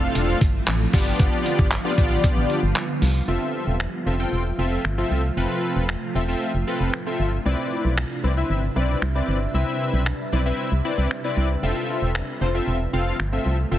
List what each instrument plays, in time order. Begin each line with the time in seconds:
Already playing: ambient pad D3 F3 A3 C4 F4, analog polysynth C4 D4 F4 A4 F5
0.15 fm bass E1, closed hi-hat
0.41 fm bass G1, kick, closed hi-hat
0.67 fm bass A1, clap, closed hi-hat, tambourine
0.93 fm bass G1, ambient pad D3 G3 B3, analog polysynth B3 D4 F4 G4 D5, kick, open hi-hat
1.19 fm bass G1, kick, closed hi-hat
1.46 closed hi-hat
1.59 fm bass G1, kick
1.72 clap, closed hi-hat, tambourine
1.84 analog polysynth B3 D4 F4 G4 D5
1.98 fm bass A1, analog polysynth B3 D4 F4 G4 D5, kick, closed hi-hat
2.24 kick, closed hi-hat
2.37 fm bass A1
2.50 closed hi-hat
2.63 fm bass G1
2.76 clap, closed hi-hat, tambourine
3.02 fm bass C2, open hi-hat
3.28 fm bass F1, ambient pad C3 F3 A3 F4 E5, analog polysynth C4 F4 A4 E5
3.67 fm bass E1
3.80 finger snap
4.06 fm bass F1, analog polysynth C4 F4 A4 E5
4.19 analog polysynth C4 F4 A4 G5
4.32 fm bass E1
4.58 fm bass F1, analog polysynth C4 F4 A4 E5
4.85 fm bass G1, finger snap
4.98 analog polysynth C4 F4 A4 E5
5.11 fm bass C2
5.37 fm bass F1, analog polysynth C4 F4 A4 B4, ambient pad D4
5.76 fm bass E1
5.89 finger snap
6.15 fm bass E1, analog polysynth C4 F4 A4 E5
6.28 analog polysynth C4 F4 A4 E5
6.54 fm bass F1
6.67 analog polysynth C4 F4 A4 B4
6.80 fm bass F1
6.94 finger snap
7.06 analog polysynth C4 F4 A4 E5
7.20 fm bass G1
7.45 fm bass C2, ambient pad G3 B4 E5, analog polysynth C4 E4 B4 D5
7.85 fm bass B1
7.98 finger snap
8.24 fm bass C2, analog polysynth C4 E4 B4 D5
8.37 analog polysynth C4 E4 B4 E5
8.50 fm bass G1
8.76 fm bass B1, analog polysynth C4 E4 B4 D5
9.02 fm bass C2, finger snap
9.15 analog polysynth C4 E4 B4 D5
9.28 fm bass G1
9.54 fm bass C2, analog polysynth C4 E4 B4 E5
9.93 fm bass B1
10.06 finger snap
10.32 fm bass B1, analog polysynth C4 E4 B4 D5
10.45 analog polysynth C4 E4 B4 E5
10.72 fm bass C2
10.85 analog polysynth C4 E4 B4 D5
10.98 fm bass C2
11.11 finger snap
11.24 analog polysynth C4 E4 B4 D5
11.37 fm bass C2
11.63 fm bass F1, ambient pad F3 A3 F4, analog polysynth C4 F4 A4 E5
12.02 fm bass E1
12.15 finger snap
12.41 fm bass F1, analog polysynth C4 F4 A4 C5
12.54 analog polysynth C4 F4 A4 E5
12.67 fm bass E1
12.93 fm bass F1, analog polysynth C4 F4 A4 F5
13.20 fm bass G1, finger snap
13.32 analog polysynth C4 F4 A4 E5
13.46 fm bass C2
13.71 fm bass F1, analog polysynth C4 F4 A4 E5